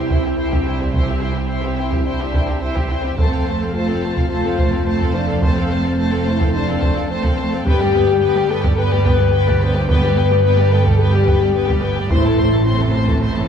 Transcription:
Already playing: C2 C4 E4 G4 E5
0.10 E4 C5 G5, taiko
0.24 C4 G4 E5
0.38 E4 C5 G5
0.52 C4 G4 E5, taiko
0.65 D4 E4 C5 G5
0.80 C4 G4 E5
0.93 C4 E4 C5 G5, taiko
1.07 C4 G4 E5
1.21 E4 C5 G5
1.35 C4 G4 E5
1.49 E4 C5 G5
1.63 C4 G4 E5
1.77 E4 C5 G5
1.91 C4 G4 E5, taiko
2.05 D4 E4 C5 G5
2.20 C4 G4 E5
2.34 E4 C5 G5, taiko
2.48 C4 G4 E5
2.62 C4 E4 C5 G5
2.76 C4 G4 E5, taiko
2.90 E4 C5 G5
3.04 C4 G4 E5
3.18 F1 F2 A3 A4 C5 A5, taiko
3.32 C4 A4 F5
3.46 A3 C5 A5
3.61 C4 A4 F5
3.75 A3 F4 C5 A5
3.88 C4 A4 F5
4.02 A3 C5 A5
4.15 C4 A4 F5, taiko
4.29 A3 F4 C5 A5
4.43 C4 A4 F5
4.57 A3 C5 A5, taiko
4.72 C4 A4 F5
4.85 A3 C5 A5
5.00 C4 A4 F5, taiko
5.14 A3 D4 C5 A5
5.27 C4 A4 F5
5.41 A3 C4 C5 A5, taiko
5.56 C4 A4 F5
5.69 A3 C5 A5
5.83 C4 A4 F5
5.97 A3 C5 A5
6.12 C4 A4 F5
6.26 A3 E4 C5 A5
6.40 C4 A4 F5, taiko
6.53 A3 D4 C5 A5
6.68 C4 A4 F5
6.82 A3 C5 A5, taiko
6.96 C4 A4 F5
7.09 A3 C4 C5 A5
7.23 C4 A4 F5, taiko
7.37 A3 C5 A5
7.51 C4 A4 F5
7.65 G1 G2 B3 G4 B4 G5, taiko
7.80 G3 G4 D5
7.93 B3 B4 G5
8.07 G3 G4 D5
8.20 B3 B4 G5
8.36 G3 G4 D5
8.49 B3 A4 B4 G5
8.63 G3 G4 D5, taiko
8.77 B3 B4 G5
8.91 G3 G4 D5
9.05 B3 B4 G5, taiko
9.18 G3 G4 D5
9.32 B3 B4 G5
9.47 G3 G4 D5, taiko
9.60 B3 B4 C5 G5
9.75 G3 G4 D5
9.89 B3 B4 G5, taiko
10.02 G3 G4 D5
10.17 B3 B4 G5
10.30 G3 G4 D5
10.43 B3 B4 G5
10.58 G3 G4 D5
10.72 B3 A4 B4 G5
10.85 G3 G4 D5, taiko
10.99 B3 G4 B4 G5
11.13 G3 G4 D5
11.27 B3 B4 G5, taiko
11.40 G3 G4 D5
11.54 B3 B4 G5
11.68 G3 G4 D5, taiko
11.81 B3 B4 G5
11.96 G3 G4 D5
12.10 A1 A2 A3 E4 C5 C6, taiko
12.19 A2
12.24 A2 E3 A4 A5
12.33 A2
12.38 A2 A3 C5 C6
12.48 A2 E3 A4
12.53 A2 A5
12.63 A2 A3 C4 C5 C6
12.71 A2
12.77 A2 E3 A4 A5
12.86 A2
12.93 A2 A3 C5 C6
13.00 A2
13.07 A2 E3 A4 A5, taiko
13.16 A2
13.22 A2 A3 C4 C5 C6
13.30 A2
13.36 A2 E3 A4 A5

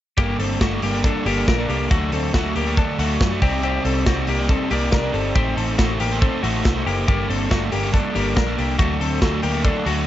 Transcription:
0.17 G1 G3 A#3 D4 G4 A4, kick, closed hi-hat
0.39 G1 C4 A4, open hi-hat
0.61 G1 G3 A3 A#3 D4 F#4 A4, kick, snare, closed hi-hat
0.82 G1 A#3 G4, open hi-hat
0.93 G3 A#3 D4 A4
1.04 D4 A4, kick, closed hi-hat
1.25 G1 G3 A#3 D4 G4 A4, open hi-hat
1.48 A#1 D4 A#4, kick, snare
1.58 A#3 D4 A4
1.69 C2 A#3 G4, open hi-hat
1.90 D2 F#3 A3 D4 F#4 A4, kick, closed hi-hat
2.12 D2 C4 A4, open hi-hat
2.34 D2 D3 F#3 A3 D4 F#4 A4, kick, snare
2.56 D2 A#3 G4, open hi-hat
2.66 D3 F#3 A3 D4 A4
2.77 D4 A4, kick, closed hi-hat
2.98 D2 F#3 A3 D4 F#4 A4, open hi-hat
3.21 F#2, kick, snare
3.31 A3 D4 A4
3.41 C2 C3 G3 C4 D#4 G4 D5, kick, open hi-hat
3.63 C4 G4, closed hi-hat
3.85 C2 C4 A4, open hi-hat
4.06 C2 C3 G3 C4 D#4 F#4 G4 D5, kick, snare, closed hi-hat
4.27 C2 A#3 G4, open hi-hat
4.38 C3 G3 C4 D#4 G4 D5
4.49 C4 A4, kick, closed hi-hat
4.71 C2 A#3 C4 D#4 G4 D5, open hi-hat
4.92 C2 D4 A#4, kick, snare
5.03 C4 D#4 G4 D5
5.14 G1 C4 A4, open hi-hat
5.35 A1 A3 C4 D#4 G4 A4 C5, kick, closed hi-hat
5.57 A1 C4 A4, open hi-hat
5.78 A1 A3 D#4 F#4 A4 C5, kick, snare, closed hi-hat
6.00 A1 A#3 G4, open hi-hat
6.11 A3 D#4 A4 C5
6.21 C4 A4, kick, closed hi-hat
6.43 A1 A3 D#4 F#4 A4 C5, open hi-hat
6.65 C2, kick, snare, closed hi-hat
6.75 D#4 A4 C5
6.86 F#1 A#3 G4, open hi-hat
7.07 G1 G3 A#3 D4 G4 A4, kick, closed hi-hat
7.29 G1 C4 A4, open hi-hat
7.50 G1 G3 A3 A#3 D4 F#4 A4, kick, snare, closed hi-hat
7.72 G1 A#3 G4, open hi-hat
7.82 G3 A#3 D4 A4
7.93 D4 A4, kick, closed hi-hat
8.14 G1 G3 A#3 D4 G4 A4, open hi-hat
8.36 A#1 D4 A#4, kick, snare, closed hi-hat
8.47 A#3 D4 A4
8.58 C2 A#3 G4, open hi-hat
8.79 D2 F#3 A3 D4 F#4 A4, kick, closed hi-hat
9.00 D2 C4 A4, open hi-hat
9.21 D2 D3 F#3 A3 D4 F#4 A4, kick, snare, closed hi-hat
9.43 D2 A#3 G4, open hi-hat
9.54 D3 F#3 A3 D4 A4
9.65 D4 A4, kick, closed hi-hat
9.85 D2 F#3 A3 D4 F#4 A4, open hi-hat

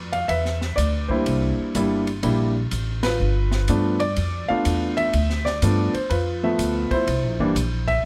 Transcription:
Already playing: F2 D5
0.12 F5, ride
0.28 E2 B4 E5, ride
0.45 snare
0.61 snare
0.76 D2 D5, hi-hat pedal, ride
1.08 G3 A#3 D4 E4 C5, kick
1.26 C2, ride
1.58 muted upright bass stroke
1.75 G1 G3 A#3 D4 E4, hi-hat pedal, ride
2.07 ride
2.23 A#1 G3 A#3 D4 E4, ride
2.71 A1, hi-hat pedal, ride
3.03 F4 B4, snare, ride
3.20 G1
3.52 snare
3.68 G2 F3 A3 B3 D4, hi-hat pedal, ride
4.00 D5, ride
4.16 F2, ride
4.48 A3 B3 D4 F4 F5, muted upright bass stroke
4.65 E2, hi-hat pedal, ride
4.97 E5, ride
5.13 D2, ride
5.30 snare
5.45 D5, snare
5.62 G2 F3 A3 B3 D4, hi-hat pedal, ride
5.94 C5, muted upright bass stroke, ride
6.10 F2 F4 B4, ride
6.43 F3 A3 B3 E5
6.58 D2, hi-hat pedal, ride
6.91 E4 C5, muted upright bass stroke, kick, ride
7.07 C2, ride
7.23 A#1
7.39 G1 E3 G3 A#3 D4
7.55 A#1, hi-hat pedal, ride
7.88 E5, kick, ride

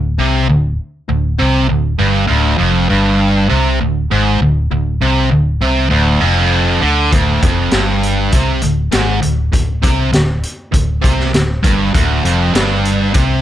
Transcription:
Already playing: D1 D2
0.19 C2 C3
0.49 D1 D2
1.09 D1 D2
1.39 C2 C3
1.69 D1 D2
1.99 G1 G2
2.27 D1 D2
2.58 F1 F2
2.89 G1 G2
3.50 C2 C3
3.81 D1 D2
4.11 G#1 G#2
4.41 D1 D2
4.71 D1 D2
5.01 C2 C3
5.32 D1 D2
5.61 C2 C3
5.90 D1 D2
6.21 F1 F2
6.81 D2 D3
7.12 D1 D2, kick, closed hi-hat
7.43 F1 F2, kick, closed hi-hat
7.71 G1 G2, snare, closed hi-hat
8.03 closed hi-hat
8.32 C2 C3, kick, closed hi-hat
8.62 D1 D2, closed hi-hat
8.91 G#1 G#2, snare, closed hi-hat
9.22 D1 D2, closed hi-hat
9.53 D1 D2, kick, closed hi-hat
9.82 C2 C3, kick, closed hi-hat
10.13 D1 D2, snare, closed hi-hat
10.43 closed hi-hat
10.72 D1 D2, kick, closed hi-hat
11.02 C2 C3, kick, closed hi-hat
11.20 snare
11.33 D1 D2, snare, closed hi-hat
11.63 G1 G2, kick, closed hi-hat
11.94 D1 D2, kick, closed hi-hat
12.24 F1 F2, closed hi-hat
12.54 G1 G2, snare, closed hi-hat
12.85 closed hi-hat
13.14 C2 C3, kick, closed hi-hat

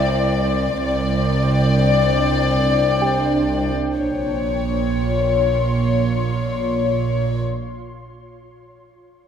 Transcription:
Already playing: C2 E4 C5 D5 E5 G5
0.84 C2 D4 C5 D5 G5
3.02 G4 G5
3.96 A#1 A#2 F4 C#5 C6

